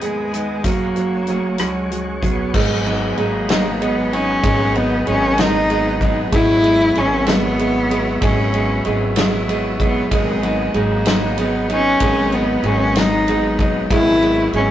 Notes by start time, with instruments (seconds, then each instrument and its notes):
Already playing: upright bass D#2, clean electric guitar G#2 D#3 G#3 B3 D#4 G#4, grand piano G#3 D#4, tonewheel organ B4 D#5 G#5 D#6
0.01 grand piano G#3, cello G#3, closed hi-hat
0.31 clean electric guitar G#3 B3 D#4 G#4, grand piano D#4, closed hi-hat
0.63 upright bass F#1, clean electric guitar F#3 C#4 F#4 G#4, grand piano F#3, cello A#3, tonewheel organ G#4 C#5 F#5 C#6, kick, closed hi-hat
0.96 grand piano F#3, closed hi-hat
1.27 clean electric guitar F#3 C#4 F#4 G#4, grand piano F#3, closed hi-hat
1.58 upright bass C#2, grand piano F#3, clean electric guitar F#3 C#4 F#4 G#4, cello G#3, cross-stick, closed hi-hat
1.91 grand piano F#3, closed hi-hat
2.22 grand piano F#3, cello B3, clean electric guitar C#4 F#4 G#4, kick, closed hi-hat
2.54 upright bass G#1, clean electric guitar G#2 D#3 F#3 B3 D#4 G#4, grand piano G#3, cello G#3, tonewheel organ G#4 D#5 F#5 B5, kick, crash
2.69 clean electric guitar F#3 B3 D#4 G#4
2.85 clean electric guitar F#3 B3 D#4 G#4, grand piano D#4, ride
3.17 upright bass G#1, clean electric guitar F#3 D#4 G#4, grand piano G#3, cello A#3, ride
3.49 clean electric guitar G#2 D#3 F#3 B3 D#4 G#4, grand piano D#4, snare, ride
3.64 clean electric guitar F#3 B3 D#4 G#4
3.80 clean electric guitar F#3 B3 D#4 G#4, grand piano G#3, cello B3, ride
4.11 clean electric guitar F#3 B3 D#4 G#4, cello C#4, grand piano D#4, ride
4.43 upright bass G#1, clean electric guitar G#2 D#3 F#3 B3 D#4 G#4, grand piano G#3, kick, ride
4.59 clean electric guitar F#3 B3 D#4 G#4
4.74 clean electric guitar F#3 B3 D#4, cello B3, grand piano D#4, ride
4.78 clean electric guitar G#4
5.06 upright bass G#1, clean electric guitar F#3 B3 D#4 G#4, grand piano G#3, cello C#4, ride
5.38 clean electric guitar G#2 D#3 F#3 B3 D#4 G#4, grand piano D#4, cello D#4, snare, ride
5.53 clean electric guitar F#3 B3 D#4 G#4
5.69 clean electric guitar F#3 B3 D#4 G#4, grand piano G#3, ride
6.00 clean electric guitar F#3 B3 D#4 G#4, grand piano D#4, kick, ride
6.32 upright bass G#1, clean electric guitar G#2 C#3 F#3 B3 E4 G#4, grand piano G#3, cello E4, tonewheel organ F#4 C#5 E5, kick, ride
6.48 clean electric guitar F#3 B3 E4 G#4
6.62 clean electric guitar F#3 B3 E4 G#4, grand piano G#3, ride
6.95 upright bass G#1, clean electric guitar F#3 B3 E4 G#4, grand piano G#3, cello C#4, ride
7.26 clean electric guitar G#2 C#3 F#3 B3 E4 G#4, grand piano G#3, cello B3, snare, ride
7.42 clean electric guitar F#3 B3 E4 G#4
7.57 clean electric guitar F#3 B3 E4 G#4, grand piano G#3, ride
7.89 clean electric guitar F#3 B3 E4 G#4, grand piano G#3, ride
8.21 upright bass G#1, clean electric guitar G#2 C#3 F#3 B3 E4 G#4, grand piano G#3, cello C#4, kick, ride
8.36 clean electric guitar F#3 B3 E4 G#4
8.52 clean electric guitar F#3 B3 E4 G#4, grand piano G#3, ride
8.84 upright bass G#1, clean electric guitar F#3 B3 E4 G#4, grand piano G#3, ride
9.15 clean electric guitar G#2 C#3 F#3 B3 E4 G#4, grand piano G#3, snare, ride
9.31 clean electric guitar F#3 B3 E4 G#4
9.47 clean electric guitar F#3 B3 E4 G#4, grand piano G#3, ride
9.79 clean electric guitar F#3 B3 E4 G#4, grand piano G#3, kick, ride
9.83 cello B3
10.11 upright bass G#1, clean electric guitar G#2 D#3 F#3 B3 D#4 G#4, grand piano G#3, cello G#3, tonewheel organ G#4 D#5 F#5, kick, ride
10.26 clean electric guitar F#3 B3 D#4 G#4
10.42 clean electric guitar F#3 B3 D#4 G#4, grand piano D#4, ride
10.73 upright bass G#1, clean electric guitar F#3 D#4 G#4, grand piano G#3, cello A#3, ride
11.06 clean electric guitar G#2 D#3 F#3 B3 D#4 G#4, grand piano D#4, snare, ride
11.21 clean electric guitar F#3 B3 D#4 G#4
11.37 clean electric guitar F#3 B3 D#4 G#4, grand piano G#3, cello B3, ride
11.68 clean electric guitar F#3 B3 D#4 G#4, grand piano D#4, ride
11.72 cello C#4
12.00 upright bass G#1, clean electric guitar G#2 D#3 F#3 B3 D#4 G#4, grand piano G#3, kick, ride
12.15 clean electric guitar F#3 B3 D#4 G#4
12.31 clean electric guitar F#3 B3 D#4 G#4, cello B3, grand piano D#4, ride
12.63 upright bass G#1, clean electric guitar F#3 B3 D#4 G#4, grand piano G#3, cello C#4, ride
12.95 clean electric guitar G#2 D#3 F#3 B3 D#4 G#4, grand piano D#4, cello D#4, snare, ride
13.11 clean electric guitar F#3 B3 D#4 G#4
13.26 clean electric guitar F#3 B3 D#4 G#4, grand piano G#3, ride
13.58 clean electric guitar F#3 B3 D#4 G#4, grand piano D#4, kick, ride
13.90 upright bass G#1, clean electric guitar G#2 C#3 F#3 B3 E4 G#4, grand piano G#3, cello E4, tonewheel organ F#4 C#5 E5 B5, kick, ride
14.05 clean electric guitar F#3 B3 E4 G#4
14.21 clean electric guitar F#3 B3 E4 G#4, grand piano G#3, ride
14.53 upright bass G#1, clean electric guitar F#3 B3 E4 G#4, grand piano G#3, cello C#4, ride